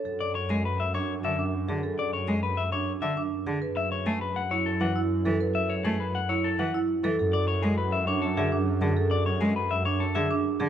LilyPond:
<<
  \new Staff \with { instrumentName = "Clean electric guitar" } { \time 3/4 \key b \dorian \tempo 4 = 101 r16 d''16 cis''16 gis'16 b'16 e''16 cis''16 r16 e''16 r8. | r16 d''16 cis''16 gis'16 b'16 e''16 cis''16 r16 e''16 r8. | r16 e''16 cis''16 gis'16 b'16 fis''16 cis''16 a'16 fis''16 r8. | r16 e''16 cis''16 gis'16 b'16 fis''16 cis''16 a'16 fis''16 r8. |
r16 d''16 cis''16 gis'16 b'16 e''16 cis''16 a'16 e''16 r8. | r16 d''16 cis''16 gis'16 b'16 e''16 cis''16 a'16 e''16 r8. | }
  \new Staff \with { instrumentName = "Marimba" } { \time 3/4 \key b \dorian a'16 r4 r16 d'16 r8 d'16 r16 gis'16 | a'16 r4 r16 d'16 r8 d'16 r16 gis'16 | b'16 r4 r16 e'16 r8 e'16 r16 a'16 | b'16 r4 r16 e'16 r8 e'16 r16 a'16 |
a'16 r4 r16 d'16 r16 gis'16 d'16 r16 gis'16 | a'16 r4 r16 d'16 r16 gis'16 d'16 r16 gis'16 | }
  \new Staff \with { instrumentName = "Cello" } { \clef bass \time 3/4 \key b \dorian r8. gis16 r4 d16 r8 d16 | r8. gis16 r4 d16 r8 d16 | r8. a16 r4 e16 r8 e16 | r8. a16 r4 e16 r8 e16 |
r8. gis16 r4 d16 r8 d16 | r8. gis16 r4 d16 r8 d16 | }
  \new Staff \with { instrumentName = "Double bass section" } { \clef bass \time 3/4 \key b \dorian fis,2.~ | fis,2. | fis,2.~ | fis,2. |
fis,2.~ | fis,2. | }
>>